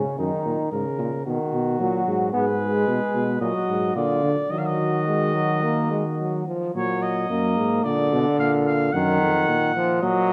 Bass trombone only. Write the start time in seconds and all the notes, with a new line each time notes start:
0.18 F#2
0.45 A#2
0.72 G#2
0.99 A#2
1.26 B2
1.53 B2
1.80 A#2
2.07 G#2
2.34 G#2
2.88 B2
3.14 B2
3.41 A#2
3.69 G#2
3.96 A#2
4.23 D3
4.51 D#3
6.75 A#2
7.30 F#2
7.57 G#2
7.85 A#2
8.13 B2
8.39 A#2
8.94 F#2
9.21 F2
9.48 A#2
10.02 A#2